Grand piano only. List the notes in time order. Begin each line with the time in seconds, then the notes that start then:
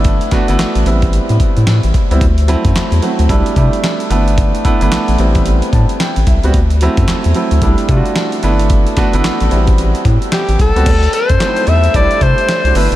Already playing: A3 B3 D4 E4
0.32 A3 B3 D4 F#4
0.48 A3 B3 D4 E4
0.86 G3 B3 C4 E4
2.10 G3 B3 C4 E4
2.48 F#3 A3 C4 E4
3.02 F#3 A3 C4 F#4
3.29 G3 A3 D4 E4
3.56 G3 A3 D4 E4
4.10 A3 B3 D4 E4
4.64 A3 B3 D4 E4
4.81 A3 B3 D4 E4
5.19 G3 B3 C4 E4
5.73 A5
6.01 G5
6.28 E5
6.44 G3 B3 C4 F#4
6.82 F#3 A3 C4 E4
7.35 F#3 A3 C4 E4
7.62 G3 A3 D4 E4
7.89 G3 A3 D4 F4
7.97 F#4
8.43 A3 B3 D4 E4
8.97 A3 B3 D4 F#4
9.13 A3 B3 D4 E4
9.50 G3 B3 C4 E4
10.75 G3 B3 C4 F#4
11.40 F#3 A3 C4 D#4
11.47 E4
11.94 G3 A3 D4 E4
12.65 G3 A3 D4 F#4
12.75 A3 B3 D4 E4